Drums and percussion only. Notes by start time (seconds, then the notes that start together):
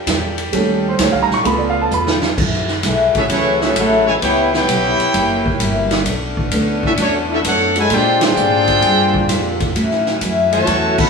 0.07 kick, snare, hi-hat pedal, ride
0.38 ride
0.53 kick, ride
0.99 kick, snare, hi-hat pedal, ride
1.31 snare
1.45 kick, ride
1.91 hi-hat pedal
2.07 snare
2.22 snare
2.38 kick, crash
2.53 snare
2.68 snare
2.83 kick, snare, hi-hat pedal, ride
3.15 kick, ride
3.30 kick, ride
3.61 snare
3.76 kick, hi-hat pedal, ride
4.22 kick, ride
4.54 snare
4.69 kick, hi-hat pedal, ride
5.00 ride
5.14 kick, ride
5.46 kick
5.60 kick, hi-hat pedal, ride
5.91 snare, ride
6.06 kick, ride
6.37 kick
6.51 kick, hi-hat pedal, ride
6.83 kick
6.97 kick, ride
7.44 kick, hi-hat pedal, ride
7.76 ride
7.90 kick, ride
8.21 snare, ride
8.36 hi-hat pedal
8.68 kick, ride
8.82 kick, ride
9.14 kick
9.29 kick, snare, hi-hat pedal, ride
9.60 kick, ride
9.75 kick, ride
9.91 snare
10.06 snare
10.21 kick, hi-hat pedal, ride
10.52 ride
10.67 kick, ride
10.98 kick, crash